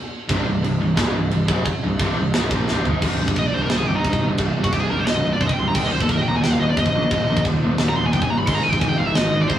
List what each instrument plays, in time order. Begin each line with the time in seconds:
0.29 picked electric bass C1, distorted electric guitar C2 G2 C3, kick, crash
0.46 picked electric bass C1, distorted electric guitar C2 G2
0.64 picked electric bass C1, distorted electric guitar C2 G2, crash
0.81 picked electric bass C1, distorted electric guitar C2 G2
0.97 picked electric bass C#1, distorted electric guitar C#2 G#2 C#3, kick, snare, crash
1.15 picked electric bass C1, distorted electric guitar C2 G2
1.31 picked electric bass C1, distorted electric guitar C2 G2, crash
1.48 picked electric bass F#1, distorted electric guitar F#2 C#3 F#3, kick
1.66 muted picked electric bass stroke, muted distorted electric guitar stroke, kick, crash
1.83 picked electric bass C1, distorted electric guitar C2 G2
1.99 picked electric bass C1, distorted electric guitar C2 G2 C3, kick, crash
2.18 picked electric bass C1, distorted electric guitar C2 G2
2.34 picked electric bass C#1, distorted electric guitar C#2 G#2 C#3, snare, crash
2.51 picked electric bass A#1, distorted electric guitar A#2 F3 A#3, kick
2.68 picked electric bass C1, distorted electric guitar C2 G2 C3, snare
2.85 picked electric bass G#1, distorted electric guitar G#2 D#3 G#3, floor tom
3.02 picked electric bass C1, distorted electric guitar C2 G2 C3, kick, crash, china
3.19 picked electric bass C1, distorted electric guitar C2 G2
3.28 distorted electric guitar C2 G2, kick
3.36 picked electric bass A#1, distorted electric guitar C2 G2, lead electric guitar D#5, kick, china
3.46 lead electric guitar D5
3.53 picked electric bass C1, distorted electric guitar C2 G2, lead electric guitar C5
3.61 distorted electric guitar C2 G2, lead electric guitar A#4
3.70 picked electric bass C1, distorted electric guitar C2 G2, lead electric guitar C5, snare, china
3.77 distorted electric guitar C2 G2, lead electric guitar G#4
3.87 picked electric bass C1, distorted electric guitar C2 G2, lead electric guitar G4
3.95 distorted electric guitar C2 G2, lead electric guitar D#4
4.04 picked electric bass C1, distorted electric guitar C2 G2, kick, china
4.13 kick
4.22 picked electric bass G1, distorted electric guitar C2 G2
4.29 distorted electric guitar C2 G2
4.38 picked electric bass C1, distorted electric guitar C2 G2, kick, china
4.42 distorted electric guitar C3
4.56 picked electric bass G1, distorted electric guitar C2 G2
4.64 distorted electric guitar C2 G2, lead electric guitar F#4, kick
4.73 picked electric bass C1, distorted electric guitar C2 G2, lead electric guitar G4, kick, china
4.81 lead electric guitar G#4
4.89 picked electric bass C1, distorted electric guitar C2 G2, lead electric guitar A#4
4.99 distorted electric guitar C2 G2, lead electric guitar C5
5.07 picked electric bass C1, distorted electric guitar C2 G2, lead electric guitar D#5, snare, china
5.15 distorted electric guitar C2 G2
5.23 picked electric bass C1, distorted electric guitar C2 G2
5.32 distorted electric guitar C2 G2, lead electric guitar D5
5.41 picked electric bass C1, distorted electric guitar C2 G2, lead electric guitar C5, kick, china
5.47 lead electric guitar D#5, kick
5.52 lead electric guitar G5
5.58 picked electric bass C1, distorted electric guitar C2 G2, lead electric guitar C6
5.67 distorted electric guitar C2 G2, lead electric guitar A#5
5.74 picked electric bass D#1, distorted electric guitar D#2 A#2 D#3, lead electric guitar G5, kick, china, crash
5.84 lead electric guitar D#5
5.92 picked electric bass D#1, distorted electric guitar D#2 A#2, lead electric guitar C5
6.00 distorted electric guitar D#2 A#2, lead electric guitar A4, kick
6.09 picked electric bass C1, distorted electric guitar D#2 A#2, lead electric guitar A#4, kick, china
6.17 lead electric guitar D#5
6.22 lead electric guitar G5
6.27 picked electric bass D#1, distorted electric guitar D#2 A#2, lead electric guitar A#5
6.36 distorted electric guitar D#2 A#2, lead electric guitar G#5
6.43 picked electric bass D#1, distorted electric guitar D#2 A#2, lead electric guitar G5, snare, china
6.53 distorted electric guitar D#2 A#2, lead electric guitar F5
6.59 picked electric bass D#1, distorted electric guitar D#2 A#2, lead electric guitar D#5
6.70 distorted electric guitar D#2 A#2, lead electric guitar D5
6.77 picked electric bass D#1, distorted electric guitar D#2 A#2, lead electric guitar D#5, kick, china
6.86 kick
6.95 picked electric bass A#1, distorted electric guitar D#2 A#2
7.04 distorted electric guitar D#2 A#2
7.11 picked electric bass D#1, distorted electric guitar D#2 A#2 D#3, kick, china
7.29 picked electric bass A#1, distorted electric guitar D#2 A#2
7.37 distorted electric guitar D#2 A#2, kick
7.45 picked electric bass D#1, distorted electric guitar D#2 A#2, kick, china
7.63 picked electric bass D#1, distorted electric guitar D#2 A#2
7.71 distorted electric guitar D#2 A#2
7.78 picked electric bass D#1, distorted electric guitar D#2 A#2, snare, china
7.89 distorted electric guitar D#2 A#2, lead electric guitar A#5
7.97 picked electric bass D#1, distorted electric guitar D#2 A#2, lead electric guitar C6
8.06 distorted electric guitar D#2 A#2, lead electric guitar G#5
8.13 picked electric bass D#1, distorted electric guitar D#2 A#2, lead electric guitar G5, kick, china
8.22 lead electric guitar G#5, kick
8.30 picked electric bass G1, distorted electric guitar D#2 A#2, lead electric guitar A#5
8.37 distorted electric guitar D#2 A#2, lead electric guitar B5
8.46 picked electric bass G#1, distorted electric guitar G#2 D#3 G#3, lead electric guitar C6, kick, china, crash
8.55 lead electric guitar A#5
8.63 picked electric bass G#1, distorted electric guitar G#2 D#3, lead electric guitar G#5
8.71 distorted electric guitar G#2 D#3, lead electric guitar G5, kick
8.80 picked electric bass F1, distorted electric guitar G#2 D#3, lead electric guitar G#5, kick, china
8.89 lead electric guitar G5
8.98 picked electric bass G#1, distorted electric guitar G#2 D#3, lead electric guitar F5
9.06 distorted electric guitar G#2 D#3, lead electric guitar E5
9.15 picked electric bass G#1, distorted electric guitar G#2 D#3, lead electric guitar D#5, snare, china
9.24 distorted electric guitar G#2 D#3
9.33 picked electric bass G#1, distorted electric guitar G#2 D#3
9.41 distorted electric guitar G#2 D#3, lead electric guitar D5
9.48 picked electric bass G#1, distorted electric guitar G#2 D#3, lead electric guitar C5, kick, china